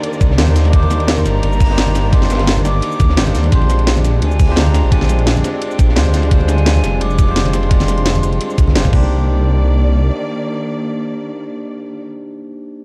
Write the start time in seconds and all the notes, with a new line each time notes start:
Already playing: D#3 A#3 D4 D#4 G4 A#4 C5 D5 C6
0.03 closed hi-hat, ride
0.13 cabasa
0.21 C2, kick, closed hi-hat, ride, high bongo, cabasa
0.31 snare
0.37 D#2 A#3 D4 D#4 G4 C5, snare, closed hi-hat, ride, high bongo
0.48 snare, closed hi-hat, high conga
0.55 snare, closed hi-hat, ride, cabasa
0.65 snare, high bongo
0.70 A#3 D4 D#4 D6, kick, closed hi-hat, ride
0.75 G4 C5
0.82 ride, high conga
0.90 snare, closed hi-hat, ride, high bongo, cabasa
1.00 closed hi-hat, ride
1.07 snare, closed hi-hat, ride
1.17 C6, snare, high conga, cabasa
1.25 G1 A#5, snare, closed hi-hat, ride, cabasa
1.43 G1, closed hi-hat, ride
1.52 cabasa
1.60 kick, closed hi-hat, open hi-hat, cabasa
1.66 A#3 D4 D#4, snare
1.71 G4 C5
1.77 G1, snare, closed hi-hat, ride
1.86 closed hi-hat, ride, high conga
1.95 snare, closed hi-hat, ride, cabasa
2.11 A#3 D4 D#4 G4 D5 C6, kick, closed hi-hat, ride
2.22 snare, high conga
2.29 snare, closed hi-hat, ride, high bongo, cabasa
2.35 snare, ride
2.39 snare, closed hi-hat, ride
2.47 snare, closed hi-hat, ride
2.57 high conga, cabasa
2.65 G1 D6, snare, closed hi-hat, ride, cabasa
2.82 closed hi-hat, ride
2.92 cabasa
2.99 D2, kick, closed hi-hat, ride, high bongo, cabasa
3.09 snare
3.16 G1 A#3 D4 D#4 G4 C5, snare, closed hi-hat, ride, high bongo
3.26 snare, closed hi-hat, ride, high conga, cabasa
3.35 D#2, snare, closed hi-hat, ride, cabasa
3.44 snare, high bongo
3.49 A#1 G#3 C4 D4 F4 C6, kick, closed hi-hat, ride
3.54 G4 C5
3.62 ride, high conga
3.70 snare, closed hi-hat, ride, high bongo, cabasa
3.79 closed hi-hat, ride
3.87 snare, closed hi-hat, ride
3.95 snare, high conga, cabasa
4.04 snare, closed hi-hat, ride, cabasa
4.22 D2 G#5, closed hi-hat, ride
4.31 cabasa
4.40 kick, closed hi-hat, open hi-hat, cabasa
4.46 G#3 D4 F4, snare
4.50 G4 C5
4.56 D2 A#5, snare, closed hi-hat, ride
4.66 closed hi-hat, ride, high conga
4.74 snare, closed hi-hat, ride, cabasa
4.84 A#1
4.90 G#3 D4 F4 G4 D5 G#5, kick, closed hi-hat, ride
5.01 snare, high conga
5.09 snare, closed hi-hat, ride, high bongo, cabasa
5.19 closed hi-hat
5.26 snare, closed hi-hat, ride
5.36 high conga, cabasa
5.44 snare, closed hi-hat, ride, cabasa
5.62 G5, closed hi-hat, ride
5.71 cabasa
5.79 A#1, kick, closed hi-hat, ride, high bongo, cabasa
5.89 snare
5.95 D2 G#3 D4 F4 G4 C5, snare, closed hi-hat, ride, high bongo
6.06 snare, closed hi-hat, high conga
6.14 snare, closed hi-hat, ride, cabasa
6.23 snare, high bongo
6.28 G#3 D4 F4, kick, closed hi-hat, ride
6.33 G3 C5
6.40 ride, high conga
6.48 G#5, snare, closed hi-hat, ride, high bongo, cabasa
6.58 closed hi-hat, ride
6.66 snare, closed hi-hat, ride
6.76 snare, high conga, cabasa
6.84 F1, snare, closed hi-hat, ride, cabasa
7.01 F1 D6, closed hi-hat, ride
7.10 cabasa
7.19 kick, closed hi-hat, ride, cabasa
7.25 G#3 D4 F4, ride
7.30 G4 C5
7.36 F1, snare, closed hi-hat, ride
7.45 closed hi-hat, ride, high conga
7.53 C6, snare, closed hi-hat, ride, cabasa
7.63 ride
7.69 G#3 D4 F4 G4 D5, kick, closed hi-hat, ride
7.80 snare, high conga, cabasa
7.88 snare, closed hi-hat, ride, high bongo, cabasa
7.98 closed hi-hat
8.05 snare, closed hi-hat, ride
8.15 closed hi-hat, high conga, cabasa
8.23 F1, closed hi-hat, ride, cabasa
8.33 closed hi-hat
8.41 closed hi-hat, ride
8.50 cabasa
8.58 C2, kick, closed hi-hat, ride, high bongo, cabasa
8.68 snare, high conga
8.74 F1 G#3 D4 F4 G4 C5, snare, closed hi-hat, ride, high bongo
8.84 A#3, kick, snare, closed hi-hat, high conga, cabasa
8.91 C2 D#3 A#3 D4 D#4 D5, kick, crash
8.95 G4 C5
9.03 high bongo